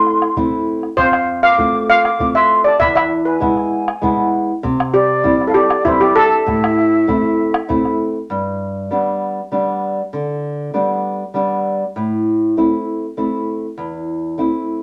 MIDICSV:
0, 0, Header, 1, 5, 480
1, 0, Start_track
1, 0, Key_signature, 0, "minor"
1, 0, Tempo, 609137
1, 774, Time_signature, 3, 2, 24, 8
1, 11684, End_track
2, 0, Start_track
2, 0, Title_t, "Quena"
2, 0, Program_c, 0, 77
2, 0, Note_on_c, 0, 84, 90
2, 262, Note_off_c, 0, 84, 0
2, 772, Note_on_c, 0, 77, 91
2, 1107, Note_off_c, 0, 77, 0
2, 1130, Note_on_c, 0, 86, 86
2, 1467, Note_off_c, 0, 86, 0
2, 1493, Note_on_c, 0, 86, 87
2, 1828, Note_off_c, 0, 86, 0
2, 1854, Note_on_c, 0, 84, 78
2, 2077, Note_off_c, 0, 84, 0
2, 2092, Note_on_c, 0, 81, 73
2, 2204, Note_off_c, 0, 81, 0
2, 2215, Note_on_c, 0, 83, 88
2, 2263, Note_off_c, 0, 83, 0
2, 2332, Note_on_c, 0, 83, 70
2, 2386, Note_off_c, 0, 83, 0
2, 2573, Note_on_c, 0, 80, 68
2, 3382, Note_off_c, 0, 80, 0
2, 3896, Note_on_c, 0, 74, 86
2, 4290, Note_off_c, 0, 74, 0
2, 4320, Note_on_c, 0, 77, 59
2, 4363, Note_off_c, 0, 77, 0
2, 4368, Note_on_c, 0, 74, 81
2, 4595, Note_off_c, 0, 74, 0
2, 4620, Note_on_c, 0, 72, 78
2, 4725, Note_off_c, 0, 72, 0
2, 4730, Note_on_c, 0, 74, 84
2, 4844, Note_off_c, 0, 74, 0
2, 4853, Note_on_c, 0, 76, 92
2, 6264, Note_off_c, 0, 76, 0
2, 11684, End_track
3, 0, Start_track
3, 0, Title_t, "Steel pan"
3, 0, Program_c, 1, 114
3, 0, Note_on_c, 1, 76, 102
3, 261, Note_off_c, 1, 76, 0
3, 764, Note_on_c, 1, 72, 97
3, 1103, Note_off_c, 1, 72, 0
3, 1127, Note_on_c, 1, 77, 97
3, 1465, Note_off_c, 1, 77, 0
3, 1494, Note_on_c, 1, 77, 91
3, 1829, Note_off_c, 1, 77, 0
3, 1852, Note_on_c, 1, 76, 93
3, 2076, Note_off_c, 1, 76, 0
3, 2083, Note_on_c, 1, 74, 88
3, 2200, Note_off_c, 1, 74, 0
3, 2204, Note_on_c, 1, 76, 104
3, 2260, Note_off_c, 1, 76, 0
3, 2328, Note_on_c, 1, 76, 93
3, 2438, Note_off_c, 1, 76, 0
3, 2564, Note_on_c, 1, 71, 68
3, 3378, Note_off_c, 1, 71, 0
3, 3890, Note_on_c, 1, 67, 93
3, 4287, Note_off_c, 1, 67, 0
3, 4314, Note_on_c, 1, 69, 63
3, 4368, Note_on_c, 1, 67, 94
3, 4372, Note_off_c, 1, 69, 0
3, 4609, Note_on_c, 1, 64, 96
3, 4619, Note_off_c, 1, 67, 0
3, 4733, Note_on_c, 1, 67, 86
3, 4736, Note_off_c, 1, 64, 0
3, 4851, Note_on_c, 1, 69, 100
3, 4858, Note_off_c, 1, 67, 0
3, 6263, Note_off_c, 1, 69, 0
3, 11684, End_track
4, 0, Start_track
4, 0, Title_t, "Nylon-string guitar"
4, 0, Program_c, 2, 24
4, 0, Note_on_c, 2, 57, 51
4, 0, Note_on_c, 2, 60, 44
4, 0, Note_on_c, 2, 64, 50
4, 193, Note_off_c, 2, 57, 0
4, 196, Note_off_c, 2, 60, 0
4, 198, Note_off_c, 2, 64, 0
4, 288, Note_on_c, 2, 57, 51
4, 291, Note_on_c, 2, 60, 49
4, 292, Note_on_c, 2, 64, 55
4, 674, Note_off_c, 2, 57, 0
4, 676, Note_off_c, 2, 60, 0
4, 677, Note_off_c, 2, 64, 0
4, 775, Note_on_c, 2, 41, 64
4, 1240, Note_off_c, 2, 41, 0
4, 1244, Note_on_c, 2, 57, 51
4, 1248, Note_on_c, 2, 60, 43
4, 1252, Note_on_c, 2, 65, 56
4, 1633, Note_off_c, 2, 57, 0
4, 1634, Note_off_c, 2, 60, 0
4, 1636, Note_off_c, 2, 65, 0
4, 1725, Note_on_c, 2, 57, 50
4, 1731, Note_on_c, 2, 60, 47
4, 1736, Note_on_c, 2, 65, 54
4, 2112, Note_off_c, 2, 57, 0
4, 2116, Note_off_c, 2, 60, 0
4, 2119, Note_off_c, 2, 65, 0
4, 2205, Note_on_c, 2, 40, 72
4, 2675, Note_off_c, 2, 40, 0
4, 2680, Note_on_c, 2, 56, 49
4, 2684, Note_on_c, 2, 59, 45
4, 2691, Note_on_c, 2, 64, 55
4, 3070, Note_off_c, 2, 56, 0
4, 3072, Note_off_c, 2, 59, 0
4, 3076, Note_off_c, 2, 64, 0
4, 3165, Note_on_c, 2, 56, 51
4, 3170, Note_on_c, 2, 59, 47
4, 3176, Note_on_c, 2, 64, 58
4, 3553, Note_off_c, 2, 56, 0
4, 3556, Note_off_c, 2, 59, 0
4, 3559, Note_off_c, 2, 64, 0
4, 3651, Note_on_c, 2, 48, 72
4, 4118, Note_off_c, 2, 48, 0
4, 4124, Note_on_c, 2, 55, 45
4, 4128, Note_on_c, 2, 60, 46
4, 4129, Note_on_c, 2, 64, 50
4, 4513, Note_off_c, 2, 55, 0
4, 4514, Note_off_c, 2, 60, 0
4, 4516, Note_off_c, 2, 64, 0
4, 4615, Note_on_c, 2, 55, 54
4, 4619, Note_on_c, 2, 60, 49
4, 4622, Note_on_c, 2, 64, 54
4, 4999, Note_off_c, 2, 55, 0
4, 5001, Note_off_c, 2, 60, 0
4, 5003, Note_off_c, 2, 64, 0
4, 5093, Note_on_c, 2, 45, 70
4, 5560, Note_off_c, 2, 45, 0
4, 5575, Note_on_c, 2, 57, 48
4, 5579, Note_on_c, 2, 60, 43
4, 5583, Note_on_c, 2, 64, 53
4, 5960, Note_off_c, 2, 57, 0
4, 5962, Note_off_c, 2, 60, 0
4, 5965, Note_off_c, 2, 64, 0
4, 6056, Note_on_c, 2, 57, 49
4, 6059, Note_on_c, 2, 60, 45
4, 6061, Note_on_c, 2, 64, 52
4, 6441, Note_off_c, 2, 57, 0
4, 6442, Note_off_c, 2, 60, 0
4, 6443, Note_off_c, 2, 64, 0
4, 6540, Note_on_c, 2, 43, 55
4, 7005, Note_off_c, 2, 43, 0
4, 7018, Note_on_c, 2, 55, 40
4, 7022, Note_on_c, 2, 59, 37
4, 7027, Note_on_c, 2, 62, 44
4, 7403, Note_off_c, 2, 55, 0
4, 7405, Note_off_c, 2, 59, 0
4, 7408, Note_off_c, 2, 62, 0
4, 7499, Note_on_c, 2, 55, 42
4, 7504, Note_on_c, 2, 59, 38
4, 7504, Note_on_c, 2, 62, 47
4, 7884, Note_off_c, 2, 55, 0
4, 7885, Note_off_c, 2, 59, 0
4, 7887, Note_off_c, 2, 62, 0
4, 7982, Note_on_c, 2, 50, 57
4, 8447, Note_off_c, 2, 50, 0
4, 8460, Note_on_c, 2, 55, 38
4, 8463, Note_on_c, 2, 62, 42
4, 8466, Note_on_c, 2, 59, 40
4, 8844, Note_off_c, 2, 55, 0
4, 8846, Note_off_c, 2, 59, 0
4, 8847, Note_off_c, 2, 62, 0
4, 8935, Note_on_c, 2, 55, 44
4, 8941, Note_on_c, 2, 59, 40
4, 8947, Note_on_c, 2, 62, 50
4, 9321, Note_off_c, 2, 55, 0
4, 9324, Note_off_c, 2, 59, 0
4, 9328, Note_off_c, 2, 62, 0
4, 9424, Note_on_c, 2, 45, 61
4, 9886, Note_off_c, 2, 45, 0
4, 9906, Note_on_c, 2, 57, 41
4, 9910, Note_on_c, 2, 60, 42
4, 9914, Note_on_c, 2, 64, 48
4, 10286, Note_off_c, 2, 57, 0
4, 10287, Note_off_c, 2, 60, 0
4, 10290, Note_off_c, 2, 64, 0
4, 10379, Note_on_c, 2, 57, 45
4, 10384, Note_on_c, 2, 60, 38
4, 10385, Note_on_c, 2, 64, 44
4, 10761, Note_off_c, 2, 57, 0
4, 10761, Note_off_c, 2, 60, 0
4, 10764, Note_off_c, 2, 64, 0
4, 10855, Note_on_c, 2, 40, 61
4, 11317, Note_off_c, 2, 40, 0
4, 11329, Note_on_c, 2, 57, 42
4, 11335, Note_on_c, 2, 60, 37
4, 11339, Note_on_c, 2, 64, 46
4, 11684, Note_off_c, 2, 57, 0
4, 11684, Note_off_c, 2, 60, 0
4, 11684, Note_off_c, 2, 64, 0
4, 11684, End_track
5, 0, Start_track
5, 0, Title_t, "Bombo"
5, 52, Note_on_c, 9, 37, 21
5, 130, Note_off_c, 9, 37, 0
5, 174, Note_on_c, 9, 37, 45
5, 252, Note_off_c, 9, 37, 0
5, 290, Note_on_c, 9, 43, 69
5, 369, Note_off_c, 9, 43, 0
5, 655, Note_on_c, 9, 37, 22
5, 734, Note_off_c, 9, 37, 0
5, 771, Note_on_c, 9, 37, 19
5, 771, Note_on_c, 9, 43, 62
5, 850, Note_off_c, 9, 37, 0
5, 850, Note_off_c, 9, 43, 0
5, 892, Note_on_c, 9, 37, 52
5, 971, Note_off_c, 9, 37, 0
5, 1250, Note_on_c, 9, 37, 20
5, 1250, Note_on_c, 9, 43, 63
5, 1329, Note_off_c, 9, 37, 0
5, 1329, Note_off_c, 9, 43, 0
5, 1379, Note_on_c, 9, 37, 20
5, 1457, Note_off_c, 9, 37, 0
5, 1616, Note_on_c, 9, 37, 51
5, 1695, Note_off_c, 9, 37, 0
5, 1735, Note_on_c, 9, 43, 75
5, 1814, Note_off_c, 9, 43, 0
5, 1858, Note_on_c, 9, 37, 22
5, 1937, Note_off_c, 9, 37, 0
5, 2216, Note_on_c, 9, 37, 22
5, 2216, Note_on_c, 9, 43, 80
5, 2295, Note_off_c, 9, 37, 0
5, 2295, Note_off_c, 9, 43, 0
5, 2340, Note_on_c, 9, 37, 63
5, 2418, Note_off_c, 9, 37, 0
5, 2695, Note_on_c, 9, 37, 21
5, 2695, Note_on_c, 9, 43, 67
5, 2773, Note_off_c, 9, 37, 0
5, 2773, Note_off_c, 9, 43, 0
5, 2815, Note_on_c, 9, 37, 23
5, 2894, Note_off_c, 9, 37, 0
5, 3058, Note_on_c, 9, 37, 49
5, 3136, Note_off_c, 9, 37, 0
5, 3178, Note_on_c, 9, 43, 69
5, 3256, Note_off_c, 9, 43, 0
5, 3660, Note_on_c, 9, 37, 22
5, 3660, Note_on_c, 9, 43, 71
5, 3739, Note_off_c, 9, 37, 0
5, 3739, Note_off_c, 9, 43, 0
5, 3784, Note_on_c, 9, 37, 54
5, 3863, Note_off_c, 9, 37, 0
5, 4139, Note_on_c, 9, 37, 20
5, 4139, Note_on_c, 9, 43, 72
5, 4217, Note_off_c, 9, 37, 0
5, 4217, Note_off_c, 9, 43, 0
5, 4265, Note_on_c, 9, 37, 22
5, 4343, Note_off_c, 9, 37, 0
5, 4495, Note_on_c, 9, 37, 54
5, 4574, Note_off_c, 9, 37, 0
5, 4619, Note_on_c, 9, 43, 75
5, 4697, Note_off_c, 9, 43, 0
5, 4740, Note_on_c, 9, 37, 23
5, 4819, Note_off_c, 9, 37, 0
5, 5105, Note_on_c, 9, 37, 23
5, 5105, Note_on_c, 9, 43, 74
5, 5184, Note_off_c, 9, 37, 0
5, 5184, Note_off_c, 9, 43, 0
5, 5231, Note_on_c, 9, 37, 55
5, 5310, Note_off_c, 9, 37, 0
5, 5349, Note_on_c, 9, 37, 25
5, 5428, Note_off_c, 9, 37, 0
5, 5585, Note_on_c, 9, 37, 22
5, 5585, Note_on_c, 9, 43, 68
5, 5664, Note_off_c, 9, 37, 0
5, 5664, Note_off_c, 9, 43, 0
5, 5943, Note_on_c, 9, 37, 58
5, 6022, Note_off_c, 9, 37, 0
5, 6067, Note_on_c, 9, 37, 24
5, 6067, Note_on_c, 9, 43, 74
5, 6146, Note_off_c, 9, 37, 0
5, 6146, Note_off_c, 9, 43, 0
5, 6187, Note_on_c, 9, 37, 22
5, 6266, Note_off_c, 9, 37, 0
5, 11684, End_track
0, 0, End_of_file